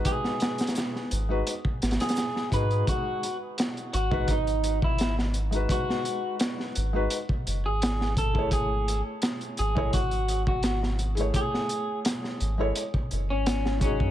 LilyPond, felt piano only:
\new Staff \with { instrumentName = "Felt piano" } { \time 4/4 \key gis \phrygian \tempo 4 = 85 <gis dis' fis' b'>4.~ <gis dis' fis' b'>16 <gis dis' fis' b'>16 r4. <gis dis' fis' gis'>8~ | <gis dis' fis' gis'>8 r4 r16 <gis dis' fis' b'>16 r4. r16 <gis dis' fis' b'>16~ | <gis dis' fis' b'>4.~ <gis dis' fis' b'>16 <gis dis' fis' b'>16 r4. r16 <a e' gis' cis''>16~ | <a e' gis' cis''>4.~ <a e' gis' cis''>16 <gis e' a' cis''>16 r4. r16 <a e' gis' cis''>16~ |
<a e' gis' cis''>4.~ <a e' gis' cis''>16 <gis e' a' cis''>16 r4. <gis dis' fis' gis'>8 | }